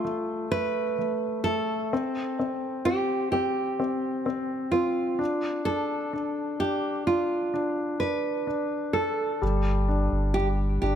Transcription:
Already playing: A3 F4
0.05 A3
0.52 A3 B4
0.99 A3
1.44 A3 A4
1.93 C4
2.39 C4
2.85 C4 G4
3.32 C4 G4
3.80 C4
4.26 C4
4.72 C4 F4
5.19 D4
5.65 D4 A4
6.13 D4
6.60 D4 G4
7.07 D4 F4
7.54 D4
8.00 D4 B4
8.47 D4
8.93 A4
9.42 G1 G3
9.89 D4
10.12 G1
10.34 G3 G4
10.82 G1 D4 G4

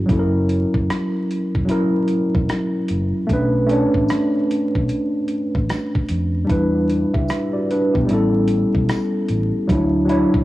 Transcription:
Already playing: F#3 C#4 E4 F#4
0.06 F#1 F#3 C#4, kick, closed hi-hat
0.11 E4 A4
0.19 A#4
0.49 closed hi-hat
0.74 F#1, kick
0.90 cross-stick, closed hi-hat
1.31 closed hi-hat
1.55 E1, kick
1.65 F#3 C#4, closed hi-hat
1.69 E4 A#4
2.08 closed hi-hat
2.35 E1, kick
2.49 cross-stick, closed hi-hat
2.88 F#1, closed hi-hat
3.27 B1 A3 C#4, kick, closed hi-hat
3.32 D4 B4
3.67 A3 C#4, closed hi-hat
3.71 D4 C#5
3.94 A1, kick
4.08 cross-stick, closed hi-hat, tambourine
4.51 closed hi-hat
4.75 B1, kick
4.89 closed hi-hat
5.28 closed hi-hat
5.55 A1, kick
5.70 cross-stick, closed hi-hat, tambourine
5.95 kick
6.09 F2, closed hi-hat
6.45 G3 D4
6.49 E2 E4 B4, kick, closed hi-hat
6.90 closed hi-hat
7.14 C#2 G4 E5, kick
7.29 cross-stick, closed hi-hat, tambourine
7.53 F#4 D5
7.71 D4 B4, closed hi-hat
7.94 B1 B3 G4, kick
8.06 A1 G3 C#4, closed hi-hat
8.11 E4 A4
8.48 closed hi-hat
8.75 B1, kick
8.89 cross-stick, closed hi-hat, tambourine
9.29 A1, closed hi-hat
9.68 D2 F#3 D4, kick, closed hi-hat
9.72 E4 C#5
10.05 F#3 D4
10.09 E4 C#5, closed hi-hat
10.34 C#2, kick

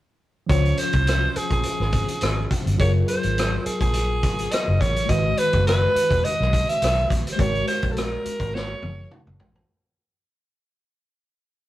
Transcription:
0.46 C#2 F3 C#4 F4 C#5, kick, closed hi-hat
0.52 C5
0.65 closed hi-hat
0.77 C5, closed hi-hat
0.93 C2, kick, closed hi-hat
1.07 cross-stick, closed hi-hat
1.36 G#4, muted fingered electric bass stroke, closed hi-hat
1.50 A#1 G#4, kick, closed hi-hat
1.63 closed hi-hat
1.80 G#1, cross-stick
1.92 kick, closed hi-hat
2.08 closed hi-hat
2.21 G#1, cross-stick, closed hi-hat
2.51 kick, closed hi-hat
2.66 G1, closed hi-hat
2.76 F#1 F#3 F4 G#4 C#5, kick, closed hi-hat
2.82 A#4
3.08 C5, closed hi-hat
3.23 G#1, closed hi-hat
3.38 cross-stick, closed hi-hat
3.66 G#4, muted fingered electric bass stroke, closed hi-hat
3.81 A#1 G#4, kick, closed hi-hat
3.93 closed hi-hat
4.23 G#1, kick, closed hi-hat
4.38 closed hi-hat
4.51 D#5, cross-stick, closed hi-hat
4.68 F#1
4.80 A1 C#5, kick, closed hi-hat
4.96 closed hi-hat
5.06 G#1 D#3 G#3 F#4 D#5, kick, closed hi-hat
5.11 B4
5.37 B4, closed hi-hat
5.53 F#1, kick, closed hi-hat
5.67 B4, cross-stick, closed hi-hat
5.95 muted fingered electric bass stroke, closed hi-hat
6.11 E1, kick, closed hi-hat
6.24 D#5, muted fingered electric bass stroke, closed hi-hat
6.40 B1, cross-stick
6.53 kick, closed hi-hat
6.69 E5, closed hi-hat
6.82 B1, cross-stick, closed hi-hat
7.10 A#1, kick, closed hi-hat
7.27 closed hi-hat
7.32 G#3 C5
7.38 G#1 F#4 A#4 C#5, kick, closed hi-hat
7.55 closed hi-hat
7.67 C5, closed hi-hat
7.82 A#1, kick, closed hi-hat
7.92 A4
7.97 A#4, cross-stick, closed hi-hat
8.25 muted fingered electric bass stroke, closed hi-hat
8.40 G#1, kick, closed hi-hat
8.54 C#5, snare
8.82 F#1, high tom
9.11 mid tom
9.27 F#1, mid tom
9.40 A1, floor tom
9.55 floor tom

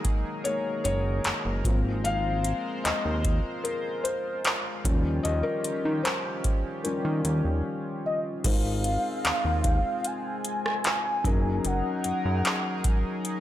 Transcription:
Already playing: D#3 F#3 G#3 A#3 D#4 G#4 A#4 D#5
0.05 kick, closed hi-hat
0.44 D#3 G#3 A#3 C#5, closed hi-hat
0.84 F#1 C#5, closed hi-hat
1.24 F#1, clap, closed hi-hat
1.45 F#1
1.65 G#1 F3 G#3 A#3 C4 F4 C5, kick, closed hi-hat
2.04 F5, closed hi-hat
2.44 closed hi-hat
2.84 D#2 D#5, clap, closed hi-hat
3.05 D#2
3.25 kick, closed hi-hat
3.64 A#4, closed hi-hat
4.04 C5, closed hi-hat
4.45 clap, closed hi-hat
4.84 D#2 D#3 F3 G3 C#4 G4, kick, closed hi-hat
5.23 D#2 D#5, closed hi-hat
5.43 A#4
5.64 D#3, closed hi-hat
5.85 D#3
6.03 C5, clap, closed hi-hat
6.44 kick, closed hi-hat
6.84 F3 G3 C#4 A#4, closed hi-hat
7.05 D#3
7.25 D#2, closed hi-hat
7.45 D#2
8.06 D#5
8.44 G#1 G#3 C4 D#4 F4 A#4 C5 F5, kick, closed hi-hat, crash
8.84 closed hi-hat
9.25 D#2, clap, closed hi-hat
9.45 D#2
9.64 kick, closed hi-hat
10.04 G#5, closed hi-hat
10.45 closed hi-hat
10.66 cross-stick
10.84 clap, closed hi-hat
11.24 F#1 F#3 C#4 D#4 G#4 A#4, kick, closed hi-hat
11.65 F#1 F#5, closed hi-hat
12.04 F#2, closed hi-hat
12.25 F#2
12.45 clap, closed hi-hat
12.84 kick, closed hi-hat
13.25 closed hi-hat

